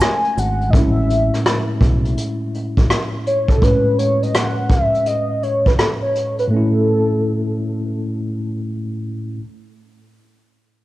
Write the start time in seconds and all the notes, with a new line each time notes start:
Already playing: G#3 A3 C#4 B4
0.00 G#5, cross-stick, closed hi-hat, maracas
0.24 closed hi-hat
0.37 G#1 F#5, closed hi-hat, maracas
0.61 closed hi-hat
0.70 A1 A2 G#3 D#5, kick
0.74 C#4 E5, closed hi-hat
0.79 E4
1.10 closed hi-hat
1.34 cross-stick, closed hi-hat
1.46 cross-stick, closed hi-hat
1.81 B1, kick, closed hi-hat
2.05 closed hi-hat
2.17 closed hi-hat
2.54 closed hi-hat
2.77 A1, kick, closed hi-hat
2.90 cross-stick, closed hi-hat
3.27 C#5, closed hi-hat
3.48 A4, kick, closed hi-hat
3.59 A2 G#3, kick
3.63 C#4 B4, closed hi-hat
3.68 B4
3.99 C#5, closed hi-hat
4.22 D#5, closed hi-hat
4.34 F#5, cross-stick, closed hi-hat
4.70 E5, kick, closed hi-hat
4.94 closed hi-hat
5.06 D#5, closed hi-hat
5.43 C#5, closed hi-hat
5.66 B4, kick, closed hi-hat
5.79 A4, cross-stick, closed hi-hat
6.02 C#5
6.15 closed hi-hat
6.39 B4, closed hi-hat
6.47 A2 A3
6.51 C#4 A4
6.57 E4